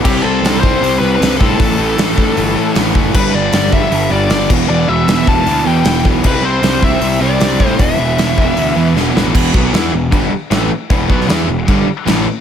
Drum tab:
CC |x---------------|----------------|x-------------x-|----------------|
HH |----o---o---o---|o---o---o---o---|----o---o---o---|----o---o---o---|
SD |----o-------o---|----o-------o---|----o-------o---|----o-------o---|
BD |o-----o-------o-|o-----o-------o-|o-----o-------o-|------o-------o-|

CC |x---------------|----------------|x---x---x---x---|x---x---x---x---|
HH |----o---o---o---|o---o---o-------|----------------|----------------|
SD |----o-------o---|----o-------o-o-|----o-------o---|---oo-------o---|
BD |o-----o-------o-|o-----o---------|o-o-----o-------|o-o-----o-------|